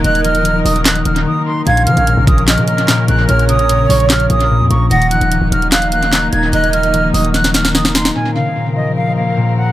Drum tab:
HH |xxxxx-oxxxxx----|xxxxx-xxxxxx--x-|xxxxx-oxxxxx--x-|xxxxx-xxxxxx--x-|
CP |--------x-------|--------x---x---|--------x-------|--------x---x---|
SD |--------o-------|--------o---o---|--------o-------|--------o---o---|
BD |----------------|------o---------|----------------|----------------|

HH |xxxxx-oxxxxx--x-|----------------|
CP |----------------|----------------|
SD |--------oooooooo|----------------|
BD |----------------|----------------|